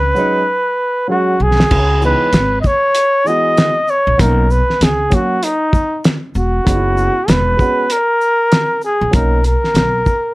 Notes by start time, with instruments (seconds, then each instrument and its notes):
Already playing: upright bass C#2, flugelhorn B4
0.15 upright piano F#3 G#3 C#4, shaker
0.19 upright piano D#4
1.08 upright piano F#3 G#3 C#4, flugelhorn F#4
1.12 upright piano F#4
1.40 upright bass B1, flugelhorn G#4
1.60 snare
1.71 upright bass C#2, kick, crash
2.01 upright piano E3 G#3 B3 D#4, shaker
2.05 flugelhorn B4
2.33 upright bass G#1, snare, closed hi-hat
2.61 flugelhorn D#5, kick, shaker
2.67 flugelhorn C#5
2.95 closed hi-hat
3.24 upright piano E3 G#3 B3, flugelhorn D#5, shaker
3.28 upright piano F#4
3.57 snare, closed hi-hat
3.88 flugelhorn C#5, shaker
4.07 upright bass A#1
4.18 upright bass B1, upright piano F#3 A#3 C#4 D#4, flugelhorn A#4, kick, closed hi-hat
4.51 flugelhorn B4, shaker
4.70 snare
4.81 upright bass C#2, flugelhorn G#4, snare, closed hi-hat
5.10 upright piano F#3 A#3 C#4 F#4, kick, closed hi-hat, shaker
5.15 flugelhorn F#4
5.43 flugelhorn D#4, closed hi-hat
5.73 kick, shaker
6.04 snare, closed hi-hat
6.35 upright bass E1, flugelhorn F#4, shaker
6.64 upright bass F#1, upright piano G#3 B3 C#4 D#4, kick, closed hi-hat
6.75 upright piano E4
6.97 shaker
7.28 upright bass E1, flugelhorn B4, snare, closed hi-hat
7.57 upright piano G#3 B3 C#4, kick, shaker
7.61 upright piano F#4
7.90 flugelhorn A#4, closed hi-hat
8.21 shaker
8.52 snare, closed hi-hat
8.82 flugelhorn G#4, shaker
9.01 upright bass A#1
9.11 upright bass B1, upright piano F#3 A#3 C#4, flugelhorn A#4, kick, closed hi-hat
9.15 upright piano D#4
9.44 flugelhorn A#4, closed hi-hat, shaker
9.64 snare
9.74 upright bass B1, snare, closed hi-hat
10.06 kick, shaker